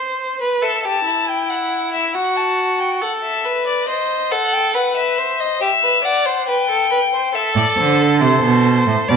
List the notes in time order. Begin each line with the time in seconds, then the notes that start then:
Already playing: C5
0.41 B4
0.62 A4 E5
0.85 G4 A5
1.06 E4
1.29 G5
1.50 F#5
1.93 E5
2.15 F#4 F#5
2.37 A5
2.80 G5
3.02 A4 F#5
3.24 E5
3.45 B4
3.67 D5
3.88 C5 D#5
4.31 A4 F#5
4.53 G5
4.74 B4 F#5
4.96 E5
5.18 C5
5.40 D#5
5.61 G4 E5
5.83 B4
6.04 D5 F#5
6.26 C5
6.48 B4 G5
6.70 A4
6.91 B4
7.13 C5
7.34 A4 E5
7.56 A2 D5
7.78 D3 C5
7.99 A4
8.21 C3 C5
8.43 B2
8.87 A2
9.08 B2 B4 D5